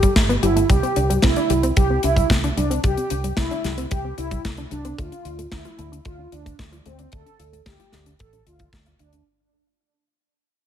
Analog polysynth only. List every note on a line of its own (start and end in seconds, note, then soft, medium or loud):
0.00 0.13 G4 medium
0.43 0.67 E4 medium
0.69 1.17 G4 loud
1.23 1.71 E4 loud
1.77 2.01 G4 medium
2.03 2.27 E4 medium
2.57 2.81 D4 medium
2.84 3.32 G4 loud
3.37 3.85 E4 medium
3.91 4.15 G4 medium
4.18 4.42 E4 medium
4.71 4.95 D4 medium
4.98 5.46 F4 medium
5.52 6.00 E4 medium
6.05 6.29 F4 medium
6.32 6.56 D4 medium
6.86 7.10 C4 medium
7.13 7.61 A4 loud
7.66 8.14 G4 medium
8.20 8.44 A4 medium
8.46 8.70 F4 medium
9.00 9.24 D4 medium